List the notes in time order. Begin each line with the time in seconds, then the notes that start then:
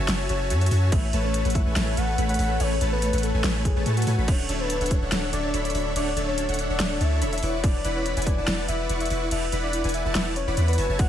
Already playing: F#4 C#5
0.00 A4
0.08 F#1 E4 F#4 E5, snare, closed hi-hat, crash
0.20 F#4
0.29 F#1 E4 F#4 C#5 E5 G#5 A5, closed hi-hat
0.41 C#5
0.50 F#2 E4 F#4 C#5 E5 G#5 A5, closed hi-hat
0.61 A4 C#5, closed hi-hat
0.66 closed hi-hat
0.71 F#2 E4 F#4 C#5 E5 G#5 A5, open hi-hat
0.83 F#4
0.92 A1 A3 E4 A4 B4 C#5 E5 G#5, kick, closed hi-hat, crash
1.03 C#5
1.13 A1 A3 E4 A4 B4 C#5 A5, closed hi-hat
1.24 A4 C#5
1.34 E4, closed hi-hat
1.45 A1 A3 G#4 A4 B4 C#5 F#5, closed hi-hat
1.50 closed hi-hat
1.55 E4 E5, kick, closed hi-hat
1.66 A1 A3 A4 B4 C#5 G#5
1.76 A1 A3 E4 A4 B4 C#5 G#5, snare, closed hi-hat, crash
1.87 A4
1.97 A1 A3 E4 A4 B4 C#5 F#5 A5, closed hi-hat
2.08 G#4
2.18 A1 A3 E4 A4 B4 C#5 B5, closed hi-hat
2.29 C#5 F#5, closed hi-hat
2.34 closed hi-hat
2.39 A1 A3 E4 A4 B4 C#5 B5, open hi-hat
2.50 A4
2.60 A1 A3 E4 A4 B4 C#5 G#5, closed hi-hat, crash
2.71 G#4
2.81 A1 A3 E4 A4 B4 C#5 A5, closed hi-hat
2.92 B4 C#5
3.02 E4, closed hi-hat
3.13 A1 A3 A4 B4 C#5 F#5, closed hi-hat
3.18 closed hi-hat
3.23 E4 A4, closed hi-hat
3.34 A1 A3 G#4 A4 B4 C#5 G#5
3.44 A1 A3 E4 A4 B4 C#5 G#5, snare, closed hi-hat, crash
3.55 C#5
3.65 G#4, kick, closed hi-hat
3.76 A1 A3 A4 B4 C#5 G#5 A5
3.86 A2 A3 A4 B4 C#5 G#5 A5, closed hi-hat
3.97 E4 F#4, closed hi-hat
4.02 closed hi-hat
4.07 A2 A3 E4 A4 B4 C#5 G#5, open hi-hat
4.18 A1 A3 A4 B4 C#5 B5
4.28 D1 D4 F#4 C#5 E5, kick, closed hi-hat, crash
4.39 A4
4.49 D1 D4 F#4 A4 C#5 E5 A5, closed hi-hat
4.60 B4 D5
4.70 F#4, closed hi-hat
4.81 D1 D4 A4 C#5 E5 F#5, closed hi-hat
4.86 closed hi-hat
4.91 F#4 C#5, kick, closed hi-hat
5.02 D1 D4 A4 C#5 E5 F#5
5.12 D1 D4 F#4 A4 C#5 E5 F#5, snare, closed hi-hat, crash
5.23 D5
5.33 D1 D4 F#4 A4 C#5 D5 E5 A5, closed hi-hat
5.44 C#5
5.54 D1 D4 F#4 A4 C#5 E5 B5, closed hi-hat
5.65 A4 D5, closed hi-hat
5.70 closed hi-hat
5.75 D1 D4 F#4 A4 C#5 E5 B5, open hi-hat
5.86 D5
5.96 D1 D4 F#4 A4 C#5 D5 E5 F#5, closed hi-hat, crash
6.07 C#5
6.17 D1 D4 F#4 A4 C#5 E5 A5, closed hi-hat
6.28 A4 C#5
6.38 F#4, closed hi-hat
6.49 D1 D4 A4 C#5 D5 E5 F#5, closed hi-hat
6.54 closed hi-hat
6.59 F#4 D5, closed hi-hat
6.70 D1 D4 A4 C#5 E5 F#5
6.80 D1 D4 F#4 A4 C#5 E5 F#5, snare, closed hi-hat, crash
6.91 A4
7.01 D2 D4 F#4 A4 C#5 E5 A5, closed hi-hat
7.12 D5
7.22 E1 D4 F#4 A4 C#5 E5 B5, closed hi-hat
7.33 C#5 E5, closed hi-hat
7.38 closed hi-hat
7.42 E1 E4 B4 D5 F#5 C#6, open hi-hat
7.54 A4
7.64 E1 E4 B4 D5 F#5 A5, kick, closed hi-hat, crash
7.75 D5
7.84 E1 E4 B4 D5 F#5 B5, closed hi-hat
7.96 B4 C#5
8.06 E4, closed hi-hat
8.17 E1 E4 A4 B4 D5 F#5 G#5, closed hi-hat
8.22 closed hi-hat
8.27 E4 D5, kick, closed hi-hat
8.38 E1 E4 B4 D5 F#5 A5
8.47 E1 E4 B4 D5 F#5 A5, snare, closed hi-hat, crash
8.59 B4
8.68 E1 E4 B4 D5 E5 F#5 B5, closed hi-hat
8.80 A4
8.89 E1 E4 B4 D5 F#5 C#6, closed hi-hat
9.00 D5 E5, closed hi-hat
9.05 closed hi-hat
9.10 E1 E4 B4 D5 F#5 C#6, open hi-hat
9.21 B4
9.31 E1 E4 B4 D5 E5 F#5 A5, closed hi-hat, crash
9.42 A4
9.52 E1 E4 B4 D5 F#5 B5, closed hi-hat
9.63 D5
9.73 E4, closed hi-hat
9.84 E1 E4 B4 D5 F#5 G#5, closed hi-hat
9.89 closed hi-hat
9.94 E4 E5, closed hi-hat
10.05 E1 E4 A4 B4 D5 F#5 A5
10.15 E1 E4 B4 D5 F#5 A5, snare, closed hi-hat, crash
10.26 D5
10.36 E4 C#5, closed hi-hat
10.47 E1 E4 B4 D5 F#5 B5
10.57 E2 E4 B4 D5 F#5 B5, closed hi-hat
10.68 A4 B4, closed hi-hat
10.73 closed hi-hat
10.78 F#1 E4 F#4 C#5 E5 G#5 A5, open hi-hat
10.89 F#1 F#4 C#5 E5 G#5 A5
10.99 F#1 F#4 F#5, kick, closed hi-hat, crash